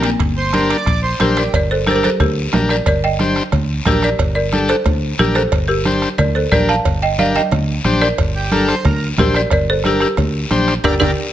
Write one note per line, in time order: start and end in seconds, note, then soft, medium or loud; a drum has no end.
0.00 0.14 A#1 medium
0.00 0.10 G4 medium
0.00 0.10 A#4 medium
0.00 bombo rim medium
0.00 high timbale medium
0.00 short guiro medium
0.04 1.16 A#3 medium
0.20 0.73 G1 loud
0.20 bombo low medium
0.20 bombo rim medium
0.20 high timbale medium
0.20 long guiro medium
0.37 0.68 C5 medium
0.53 0.77 D4 medium
0.53 0.77 G4 medium
0.53 0.77 A#4 medium
0.53 bombo rim medium
0.53 high conga medium
0.53 high timbale medium
0.53 short guiro medium
0.70 1.01 D5 loud
0.70 bombo rim medium
0.70 high timbale medium
0.70 short guiro medium
0.86 1.13 A#1 loud
0.86 bombo low medium
0.86 bombo rim medium
0.86 high timbale medium
0.86 long guiro medium
1.03 1.20 C5 medium
1.20 1.47 A#1 medium
1.20 1.43 D4 medium
1.20 1.43 G4 medium
1.20 1.36 G4 medium
1.20 1.37 A#4 medium
1.20 1.43 C5 medium
1.20 bombo rim medium
1.20 high conga medium
1.20 high timbale medium
1.20 short guiro medium
1.37 1.53 G4 medium
1.37 1.45 A#4 medium
1.37 1.45 D5 medium
1.37 bombo rim medium
1.37 high timbale medium
1.37 short guiro medium
1.53 2.06 G1 medium
1.53 1.70 A#4 medium
1.53 1.71 D5 medium
1.53 bombo low medium
1.53 bombo rim medium
1.53 cowbell loud
1.53 long guiro medium
1.71 1.79 A4 medium
1.71 1.78 C5 medium
1.86 2.10 D4 medium
1.86 2.10 G4 medium
1.86 1.91 G4 medium
1.86 1.91 A#4 medium
1.86 2.10 A#4 medium
1.86 bombo rim medium
1.86 high conga medium
1.86 short guiro medium
1.91 1.95 C5 medium
1.95 2.03 G4 medium
1.95 2.03 A#4 medium
2.03 2.19 A4 medium
2.03 2.21 C5 medium
2.03 bombo rim medium
2.03 high conga medium
2.03 short guiro medium
2.20 2.46 D2 medium
2.20 2.67 G4 medium
2.20 2.66 A#4 medium
2.20 bombo low medium
2.20 bombo rim medium
2.20 cowbell medium
2.20 low conga medium
2.20 long guiro medium
2.53 2.80 A#1 medium
2.53 2.76 D4 medium
2.53 2.76 G4 medium
2.53 2.77 A#4 medium
2.53 bombo rim medium
2.53 high conga medium
2.53 low timbale medium
2.53 short guiro medium
2.69 2.86 A#4 medium
2.69 2.86 D5 medium
2.69 bombo rim medium
2.69 short guiro medium
2.86 3.39 G1 loud
2.86 3.03 A#4 medium
2.86 3.02 D5 medium
2.86 bombo low medium
2.86 bombo rim medium
2.86 cowbell loud
2.86 long guiro medium
3.04 3.83 D#5 medium
3.04 3.89 G5 loud
3.19 3.43 D4 medium
3.19 3.43 G4 medium
3.19 3.43 C5 medium
3.19 bombo rim medium
3.19 high conga medium
3.19 short guiro medium
3.36 bombo rim medium
3.36 short guiro medium
3.52 3.79 D2 loud
3.52 bombo low medium
3.52 bombo rim medium
3.52 cowbell medium
3.52 low conga medium
3.52 long guiro medium
3.85 4.13 A#1 medium
3.85 4.10 D4 medium
3.85 4.10 G4 medium
3.85 4.02 G4 medium
3.85 4.03 A#4 medium
3.85 4.10 A#4 medium
3.85 bombo low medium
3.85 bombo rim medium
3.85 high conga medium
3.85 low timbale medium
3.85 short guiro medium
4.02 4.34 A#4 medium
4.02 4.34 D5 medium
4.02 bombo rim medium
4.02 short guiro medium
4.19 4.72 G1 loud
4.19 bombo low medium
4.19 bombo rim medium
4.19 cowbell loud
4.19 long guiro medium
4.35 4.67 A#4 medium
4.35 4.70 D5 medium
4.52 4.76 D4 medium
4.52 4.76 G4 medium
4.52 4.76 A4 medium
4.52 bombo rim medium
4.52 high conga medium
4.52 short guiro medium
4.68 5.16 A4 medium
4.68 5.21 C5 loud
4.68 bombo rim medium
4.68 short guiro medium
4.84 5.12 D2 medium
4.84 bombo low medium
4.84 bombo rim medium
4.84 cowbell medium
4.84 low conga medium
4.84 long guiro medium
5.18 5.46 A#1 medium
5.18 5.43 D4 medium
5.18 5.35 G4 medium
5.18 5.43 G4 medium
5.18 5.36 A#4 medium
5.18 5.43 A#4 medium
5.18 bombo rim medium
5.18 high conga medium
5.18 short guiro medium
5.35 5.67 A4 medium
5.35 5.66 C5 medium
5.35 bombo rim medium
5.35 short guiro medium
5.52 6.05 G1 loud
5.52 bombo low medium
5.52 bombo rim medium
5.52 cowbell medium
5.52 long guiro medium
5.68 6.15 G4 medium
5.68 6.17 A#4 medium
5.85 6.09 D4 medium
5.85 6.09 G4 medium
5.85 6.09 C5 medium
5.85 bombo rim medium
5.85 high conga medium
5.85 short guiro medium
6.02 bombo rim medium
6.02 short guiro medium
6.18 6.45 D2 medium
6.18 6.34 A#4 medium
6.18 6.34 D5 medium
6.18 bombo low medium
6.18 bombo rim medium
6.18 cowbell medium
6.18 low conga medium
6.18 long guiro medium
6.35 6.51 A4 medium
6.35 6.52 C5 medium
6.52 6.78 A#1 medium
6.52 6.75 D4 medium
6.52 6.76 G4 medium
6.52 6.60 A#4 medium
6.52 6.76 A#4 medium
6.52 6.59 D5 medium
6.52 bombo low medium
6.52 bombo rim medium
6.52 high conga medium
6.52 short guiro medium
6.69 7.00 F5 medium
6.69 7.00 A5 medium
6.69 bombo rim medium
6.69 short guiro medium
6.85 7.39 G1 medium
6.85 bombo low medium
6.85 bombo rim medium
6.85 cowbell loud
6.85 long guiro medium
7.02 7.18 D#5 medium
7.02 7.18 G5 loud
7.18 7.42 D4 medium
7.18 7.42 G4 medium
7.18 7.42 A#4 medium
7.18 7.34 D5 medium
7.18 7.36 F5 loud
7.18 bombo rim medium
7.18 high conga medium
7.18 short guiro medium
7.36 7.98 D#5 medium
7.36 8.04 G5 loud
7.36 bombo rim medium
7.36 high conga medium
7.36 short guiro medium
7.51 7.79 D2 medium
7.51 bombo low medium
7.51 bombo rim medium
7.51 cowbell medium
7.51 low conga medium
7.51 long guiro medium
7.84 8.11 A#1 medium
7.84 8.08 D4 medium
7.84 8.08 G4 medium
7.84 8.08 C5 loud
7.84 bombo rim medium
7.84 high conga medium
7.84 short guiro medium
8.01 9.14 A#4 medium
8.01 9.21 D5 medium
8.01 bombo rim medium
8.01 short guiro medium
8.18 8.72 G1 medium
8.18 bombo low medium
8.18 bombo rim medium
8.18 cowbell loud
8.18 long guiro medium
8.35 8.52 G4 medium
8.51 8.75 D4 medium
8.51 8.75 G4 medium
8.51 8.75 A4 loud
8.51 8.69 A#4 medium
8.51 bombo rim medium
8.51 high conga medium
8.51 short guiro medium
8.68 8.84 C5 medium
8.68 bombo rim medium
8.68 short guiro medium
8.85 9.11 D2 medium
8.85 9.08 A#4 medium
8.85 bombo low medium
8.85 bombo rim medium
8.85 cowbell medium
8.85 low conga medium
8.85 long guiro medium
9.18 9.44 A#1 medium
9.18 9.41 D4 medium
9.18 9.42 G4 medium
9.18 9.27 G4 medium
9.18 9.26 A#4 medium
9.18 9.42 C5 medium
9.18 bombo low medium
9.18 bombo rim medium
9.18 high conga medium
9.18 low conga medium
9.18 low timbale medium
9.18 short guiro medium
9.34 9.44 A#4 medium
9.34 9.43 D5 medium
9.34 bombo rim medium
9.34 short guiro medium
9.50 10.04 G1 loud
9.50 9.67 A#4 medium
9.50 9.69 D5 medium
9.50 bombo low medium
9.50 bombo rim medium
9.50 cowbell loud
9.50 long guiro medium
9.70 9.84 A4 medium
9.70 9.86 C5 medium
9.84 10.08 D4 medium
9.84 10.08 G4 medium
9.84 10.01 G4 medium
9.84 10.08 A#4 medium
9.84 10.00 A#4 medium
9.84 bombo rim medium
9.84 high conga medium
9.84 short guiro medium
10.00 10.80 G4 medium
10.00 10.80 A#4 medium
10.00 bombo rim medium
10.00 short guiro medium
10.17 10.44 D2 medium
10.17 bombo low medium
10.17 bombo rim medium
10.17 cowbell medium
10.17 low conga medium
10.17 long guiro medium
10.51 10.77 A#1 medium
10.51 10.74 D4 medium
10.51 10.74 G4 medium
10.51 10.74 C5 loud
10.51 bombo rim medium
10.51 high conga medium
10.51 short guiro medium
10.68 bombo rim medium
10.68 short guiro medium
10.84 10.96 G1 medium
10.84 10.95 D4 loud
10.84 10.95 G4 loud
10.84 10.95 G4 medium
10.84 10.95 A#4 medium
10.84 10.95 A#4 loud
10.84 10.95 D5 medium
10.84 bombo low loud
10.84 low conga medium
10.84 high timbale loud
10.84 long guiro medium
11.00 11.13 G1 loud
11.00 11.11 D4 loud
11.00 11.11 G4 loud
11.00 11.11 G4 medium
11.00 11.12 G4 medium
11.00 11.11 A#4 loud
11.00 11.11 A#4 medium
11.00 11.12 A#4 medium
11.00 11.11 D5 loud
11.00 11.12 D5 medium
11.00 bombo low loud
11.00 low conga loud
11.00 high timbale loud
11.00 long guiro loud